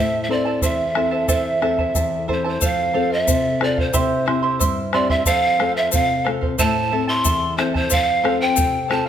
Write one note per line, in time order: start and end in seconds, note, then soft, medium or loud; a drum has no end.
0.00 0.60 A2 medium
0.00 0.29 E4 medium
0.00 0.29 A4 medium
0.00 0.29 C5 medium
0.00 0.24 E5 medium
0.00 0.28 E5 medium
0.00 0.30 A5 medium
0.24 0.33 E5 medium
0.28 0.82 C4 medium
0.28 0.82 E4 medium
0.28 0.45 E4 medium
0.28 0.83 A4 medium
0.28 0.45 C5 medium
0.28 0.65 D5 medium
0.28 0.46 E5 medium
0.28 0.44 A5 medium
0.45 0.61 E4 soft
0.45 0.61 C5 medium
0.45 0.62 A5 medium
0.62 1.27 E2 medium
0.62 0.95 E4 medium
0.62 0.95 C5 medium
0.62 0.94 E5 soft
0.62 1.30 E5 medium
0.62 0.95 A5 medium
0.62 bombo low medium
0.62 shaker medium
0.95 1.49 C4 medium
0.95 1.11 E4 medium
0.95 1.49 E4 soft
0.95 1.49 A4 medium
0.95 1.10 C5 medium
0.95 1.12 E5 medium
0.95 1.10 A5 medium
0.95 bombo rim medium
1.11 1.27 E4 soft
1.11 1.27 C5 medium
1.11 1.28 A5 medium
1.28 1.94 E2 medium
1.28 1.61 E4 medium
1.28 1.61 A4 medium
1.28 1.61 C5 medium
1.28 1.60 E5 medium
1.28 2.26 E5 medium
1.28 1.61 A5 medium
1.28 bombo low medium
1.28 shaker medium
1.61 2.15 C4 medium
1.61 2.15 E4 soft
1.61 1.79 E4 medium
1.61 2.16 A4 medium
1.61 1.78 C5 medium
1.61 1.79 E5 medium
1.61 1.77 A5 medium
1.61 bombo rim medium
1.78 1.94 E4 soft
1.78 1.94 C5 soft
1.78 1.95 A5 soft
1.78 bombo low soft
1.94 2.60 E2 medium
1.94 2.27 E4 medium
1.94 2.28 C5 medium
1.94 2.27 E5 medium
1.94 2.28 A5 medium
1.94 bombo low medium
1.94 shaker medium
2.28 2.55 C4 soft
2.28 2.44 E4 medium
2.28 2.55 E4 medium
2.28 2.55 A4 medium
2.28 2.44 C5 medium
2.28 2.45 E5 medium
2.28 2.43 A5 medium
2.28 bombo low soft
2.33 2.46 C5 medium
2.44 2.60 E4 medium
2.44 2.61 C5 medium
2.44 2.62 A5 medium
2.49 2.66 C5 medium
2.61 3.26 F2 medium
2.61 2.92 A4 medium
2.61 2.93 C5 medium
2.61 2.93 F5 medium
2.61 3.15 F5 medium
2.61 bombo low medium
2.61 shaker loud
2.93 3.48 C4 medium
2.93 3.48 F4 medium
2.93 3.11 A4 medium
2.93 3.48 A4 medium
2.93 3.11 C5 medium
2.93 3.09 F5 medium
3.10 3.27 C5 soft
3.10 3.65 E5 medium
3.10 3.28 F5 medium
3.27 3.92 C3 medium
3.27 3.59 A4 medium
3.27 3.60 C5 medium
3.27 bombo low medium
3.27 shaker loud
3.60 3.88 C4 medium
3.60 3.88 F4 medium
3.60 3.77 A4 medium
3.60 3.88 A4 medium
3.60 3.78 C5 medium
3.60 3.82 D5 medium
3.60 3.76 F5 medium
3.60 bombo rim medium
3.78 3.92 C5 soft
3.78 4.71 C5 medium
3.78 3.93 F5 medium
3.78 bombo low medium
3.93 4.59 C3 medium
3.93 4.26 E4 medium
3.93 4.27 G4 medium
3.93 4.25 C5 medium
3.93 4.26 E5 medium
3.93 4.26 C6 medium
3.93 bombo low medium
3.93 shaker medium
4.26 4.81 C4 medium
4.26 4.43 E4 medium
4.26 4.81 E4 medium
4.26 4.81 G4 medium
4.26 4.43 C5 medium
4.26 4.42 E5 medium
4.26 4.41 C6 medium
4.26 bombo rim medium
4.43 4.59 E4 soft
4.43 4.59 E5 medium
4.43 4.59 C6 medium
4.59 5.25 G2 medium
4.59 4.92 E4 medium
4.59 4.91 C5 medium
4.59 4.93 E5 medium
4.59 4.93 C6 medium
4.59 bombo low medium
4.59 shaker loud
4.93 5.20 C4 medium
4.93 5.10 E4 medium
4.93 5.21 E4 soft
4.93 5.21 G4 medium
4.93 5.10 C5 medium
4.93 5.12 D5 medium
4.93 5.09 E5 medium
4.93 5.09 C6 medium
4.93 bombo rim medium
5.10 5.26 E4 medium
5.10 5.27 E5 medium
5.10 5.26 E5 medium
5.10 5.27 C6 medium
5.10 bombo low medium
5.26 5.91 F2 medium
5.26 5.58 A4 medium
5.26 5.58 C5 medium
5.26 5.73 F5 loud
5.26 5.59 F5 medium
5.26 bombo low medium
5.26 shaker loud
5.59 6.13 C4 medium
5.59 6.13 F4 medium
5.59 5.76 A4 medium
5.59 6.14 A4 medium
5.59 5.75 C5 medium
5.59 5.74 F5 medium
5.59 bombo rim medium
5.75 5.90 C5 soft
5.75 5.92 E5 medium
5.75 5.92 F5 medium
5.91 6.57 C3 medium
5.91 6.23 A4 medium
5.91 6.24 C5 medium
5.91 6.25 F5 medium
5.91 6.30 F5 loud
5.91 bombo low medium
5.91 shaker loud
6.24 6.53 C4 medium
6.24 6.53 F4 soft
6.24 6.42 A4 medium
6.24 6.53 A4 medium
6.24 6.41 C5 medium
6.24 6.40 F5 medium
6.24 bombo rim soft
6.41 6.57 C5 soft
6.41 6.58 F5 medium
6.41 bombo low medium
6.58 7.23 A2 medium
6.58 6.91 E4 medium
6.58 6.91 A4 medium
6.58 6.92 C5 medium
6.58 6.90 E5 medium
6.58 7.05 A5 loud
6.58 6.92 A5 medium
6.58 bombo low medium
6.58 shaker loud
6.92 7.45 C4 medium
6.92 7.08 E4 medium
6.92 7.45 E4 medium
6.92 7.07 A4 medium
6.92 7.46 A4 medium
6.92 7.08 E5 medium
6.92 7.06 A5 medium
7.07 7.24 E4 medium
7.07 7.24 A4 soft
7.07 7.25 A5 medium
7.07 7.55 C6 loud
7.24 7.89 E2 medium
7.24 7.57 E4 medium
7.24 7.57 A4 medium
7.24 7.56 E5 medium
7.24 7.57 A5 medium
7.24 bombo low medium
7.24 shaker loud
7.57 7.84 C4 medium
7.57 7.74 E4 medium
7.57 7.85 E4 medium
7.57 7.74 A4 medium
7.57 7.85 A4 medium
7.57 7.73 C5 medium
7.57 7.74 E5 medium
7.57 7.73 A5 medium
7.57 bombo rim medium
7.74 7.89 E4 soft
7.74 7.89 A4 soft
7.74 7.94 C5 medium
7.74 7.91 A5 medium
7.74 bombo low medium
7.90 8.56 F2 medium
7.90 8.22 A4 medium
7.90 8.22 C5 medium
7.90 8.23 F5 medium
7.90 8.41 F5 loud
7.90 bombo low medium
7.90 shaker loud
8.23 8.77 C4 medium
8.23 8.77 F4 medium
8.23 8.40 A4 medium
8.23 8.77 A4 medium
8.23 8.40 C5 medium
8.23 8.39 F5 medium
8.23 bombo rim medium
8.40 8.55 C5 soft
8.40 8.56 F5 medium
8.40 8.92 G5 loud
8.56 9.09 C3 medium
8.56 8.87 A4 medium
8.56 8.88 C5 medium
8.56 8.88 F5 medium
8.56 bombo low medium
8.56 shaker loud
8.88 9.09 C4 medium
8.88 9.09 F4 soft
8.88 9.06 A4 medium
8.88 9.09 A4 medium
8.88 9.06 C5 medium
8.88 9.04 F5 medium
8.88 9.09 A5 medium
8.88 bombo rim medium
9.06 9.09 F5 medium